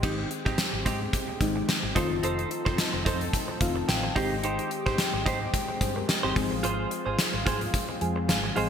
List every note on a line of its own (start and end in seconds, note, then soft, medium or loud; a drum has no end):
0.03 0.24 G#1 medium
0.03 0.71 D#3 medium
0.03 0.71 G#3 medium
0.03 1.94 G#3 medium
0.03 0.29 C4 medium
0.03 1.94 C4 medium
0.03 0.72 C4 medium
0.03 0.29 D#4 medium
0.03 1.94 G4 medium
0.03 0.72 G4 medium
0.03 0.29 G4 medium
0.03 kick loud
0.03 crash medium
0.30 muted clean electric guitar stroke soft
0.30 closed hi-hat medium
0.45 0.55 G#1 medium
0.45 0.59 C4 medium
0.45 0.58 D#4 medium
0.45 0.58 G4 medium
0.45 kick medium
0.58 snare loud
0.58 closed hi-hat medium
0.73 0.82 G#1 medium
0.73 muted clean electric guitar stroke soft
0.85 1.07 G#2 loud
0.85 1.04 C4 medium
0.85 1.01 D#4 medium
0.85 1.00 G4 medium
0.85 kick medium
0.85 closed hi-hat medium
1.01 muted clean electric guitar stroke soft
1.13 muted clean electric guitar stroke soft
1.13 kick medium
1.13 closed hi-hat medium
1.28 muted clean electric guitar stroke soft
1.40 1.61 G#1 medium
1.40 1.75 D#3 medium
1.40 1.75 G#3 medium
1.40 1.75 C4 medium
1.40 1.75 D#4 medium
1.40 kick medium
1.40 closed hi-hat medium
1.56 muted clean electric guitar stroke soft
1.68 muted clean electric guitar stroke soft
1.68 snare loud
1.68 closed hi-hat medium
1.83 1.93 G#1 medium
1.83 muted clean electric guitar stroke soft
1.95 2.07 F1 medium
1.95 2.84 D#3 medium
1.95 4.14 F3 medium
1.95 2.84 A3 medium
1.95 4.14 C4 medium
1.95 2.85 C4 medium
1.95 2.14 D#4 medium
1.95 4.14 D#4 medium
1.95 2.85 F4 medium
1.95 4.14 A4 medium
1.95 2.11 A4 medium
1.95 2.09 C5 medium
1.95 kick medium
1.95 closed hi-hat medium
2.11 2.20 F#1 medium
2.11 muted clean electric guitar stroke soft
2.23 2.44 F1 medium
2.23 2.49 D#4 medium
2.23 2.49 A4 medium
2.23 2.49 C5 medium
2.23 closed hi-hat medium
2.39 closed hi-hat soft
2.50 muted clean electric guitar stroke soft
2.50 closed hi-hat medium
2.65 2.76 F1 medium
2.65 2.79 D#4 soft
2.65 2.78 A4 medium
2.65 2.78 C5 medium
2.65 kick medium
2.78 snare loud
2.78 closed hi-hat medium
2.93 3.03 F1 medium
2.93 muted clean electric guitar stroke soft
3.05 3.27 F2 loud
3.05 3.24 D#4 medium
3.05 3.21 A4 medium
3.05 3.19 C5 medium
3.05 kick medium
3.05 closed hi-hat medium
3.21 muted clean electric guitar stroke soft
3.21 closed hi-hat soft
3.33 muted clean electric guitar stroke soft
3.33 kick medium
3.33 closed hi-hat medium
3.48 muted clean electric guitar stroke soft
3.61 3.81 F1 medium
3.61 3.95 D#3 medium
3.61 3.95 A3 medium
3.61 3.95 C4 medium
3.61 3.95 F4 medium
3.61 3.87 F5 medium
3.61 kick medium
3.61 closed hi-hat medium
3.76 muted clean electric guitar stroke soft
3.88 4.09 A1 medium
3.88 4.40 G5 medium
3.88 muted clean electric guitar stroke soft
3.88 snare loud
3.88 closed hi-hat medium
4.03 muted clean electric guitar stroke soft
4.15 4.57 G#1 medium
4.15 5.04 D#3 medium
4.15 5.04 G#3 medium
4.15 8.69 G#3 medium
4.15 5.05 C4 medium
4.15 8.69 C4 medium
4.15 4.34 D#4 medium
4.15 6.34 G4 medium
4.15 4.31 G4 medium
4.15 5.05 G4 loud
4.15 4.30 C5 loud
4.15 kick loud
4.15 open hi-hat medium
4.31 muted clean electric guitar stroke soft
4.43 4.69 D#4 medium
4.43 4.69 G4 medium
4.43 4.70 C5 medium
4.43 closed hi-hat medium
4.59 closed hi-hat medium
4.71 muted clean electric guitar stroke soft
4.71 closed hi-hat medium
4.86 4.96 G#1 medium
4.86 4.99 D#4 soft
4.86 4.99 G4 medium
4.86 4.98 C5 medium
4.86 kick medium
4.98 snare loud
4.98 closed hi-hat medium
5.13 5.23 G#1 medium
5.13 muted clean electric guitar stroke soft
5.26 5.47 G#2 medium
5.26 5.44 D#4 medium
5.26 5.41 G4 medium
5.26 5.40 C5 medium
5.26 kick medium
5.26 closed hi-hat medium
5.41 muted clean electric guitar stroke soft
5.53 muted clean electric guitar stroke soft
5.53 kick medium
5.53 closed hi-hat medium
5.69 muted clean electric guitar stroke soft
5.81 6.02 G2 medium
5.81 5.96 G#4 medium
5.81 5.96 C5 medium
5.81 kick medium
5.81 closed hi-hat medium
5.96 6.07 G4 medium
5.96 6.08 A#4 medium
5.96 muted clean electric guitar stroke soft
6.08 6.23 D#4 medium
6.08 6.23 G4 medium
6.08 muted clean electric guitar stroke soft
6.08 snare loud
6.08 closed hi-hat medium
6.23 6.33 G1 medium
6.23 6.35 C4 medium
6.23 6.50 D#4 medium
6.23 6.35 D#4 medium
6.23 6.36 G4 medium
6.23 6.36 C5 medium
6.35 6.48 G#1 medium
6.35 7.24 F3 medium
6.35 7.25 G#3 medium
6.35 7.25 C4 medium
6.35 8.69 F4 medium
6.35 7.25 G#4 loud
6.35 muted clean electric guitar stroke soft
6.35 kick medium
6.35 open hi-hat medium
6.51 6.61 A1 medium
6.51 muted clean electric guitar stroke soft
6.63 6.84 G#1 loud
6.63 6.89 F4 medium
6.63 6.89 G#4 medium
6.63 6.90 C5 medium
6.63 closed hi-hat loud
6.91 muted clean electric guitar stroke soft
6.91 closed hi-hat medium
7.06 7.16 G#1 medium
7.06 7.19 F4 soft
7.06 7.19 G#4 medium
7.06 7.18 C5 medium
7.19 snare loud
7.19 closed hi-hat medium
7.33 7.43 G#1 medium
7.33 muted clean electric guitar stroke soft
7.46 7.67 G#2 loud
7.46 7.64 F4 medium
7.46 7.61 G#4 medium
7.46 7.60 C5 medium
7.46 kick medium
7.46 closed hi-hat medium
7.61 muted clean electric guitar stroke soft
7.61 closed hi-hat medium
7.74 muted clean electric guitar stroke soft
7.74 kick medium
7.74 closed hi-hat medium
7.89 muted clean electric guitar stroke soft
8.01 8.31 F2 medium
8.01 8.35 F3 medium
8.01 8.35 G#3 medium
8.01 8.36 C4 medium
8.01 8.36 G#4 medium
8.01 8.27 G#5 medium
8.01 closed hi-hat medium
8.16 muted clean electric guitar stroke soft
8.29 8.50 G#1 medium
8.29 8.54 F5 medium
8.29 muted clean electric guitar stroke soft
8.29 snare loud
8.29 closed hi-hat medium
8.44 muted clean electric guitar stroke soft
8.56 8.69 A1 medium
8.56 8.69 F3 medium
8.56 8.69 G#3 medium
8.56 8.69 C4 medium
8.56 8.69 F4 medium
8.56 8.69 G#4 medium
8.56 8.69 C5 medium
8.56 8.69 D#5 medium
8.56 open hi-hat medium